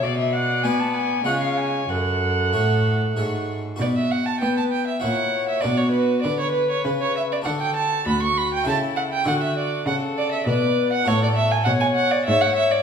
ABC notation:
X:1
M:3/4
L:1/16
Q:1/4=99
K:F#m
V:1 name="Violin"
d8 c4 | A8- A2 z2 | [K:Bm] d e f a g a g e f3 e | d c B2 d c B c B c e d |
f g a2 b c' b g a2 f g | f e d2 f2 d e d3 f | [K:F#m] c d e g f g f d e f e d |]
V:2 name="Violin"
d e f2 g a g2 f ^e g2 | f8- f2 z2 | [K:Bm] z4 B4 c4 | F4 B8 |
A4 F4 E4 | F4 A4 B4 | [K:F#m] A4 c4 c4 |]
V:3 name="Harpsichord"
z4 [B,Fd]4 [G,^Ec]4 | z4 [A,Fc]4 [A,Fc]4 | [K:Bm] [FB]8 [EF]4 | [DF]12 |
[DF]8 [EA]4 | [FA]12 | [K:F#m] [FA]12 |]
V:4 name="Harpsichord" clef=bass
B,,4 z4 C,4 | F,,4 A,,4 G,,4 | [K:Bm] B,,4 B,4 ^A,,4 | B,,4 D,4 C,4 |
D,4 D,,4 C,4 | D,4 C,4 B,,4 | [K:F#m] A,,4 B,,4 G,,4 |]
V:5 name="Cello" clef=bass
B,,4 B,4 C,4 | F,,4 A,,4 G,,4 | [K:Bm] B,,4 B,4 ^A,,4 | B,,4 D,4 C,4 |
D,4 D,,4 C,4 | D,4 C,4 B,,4 | [K:F#m] A,,4 B,,4 G,,4 |]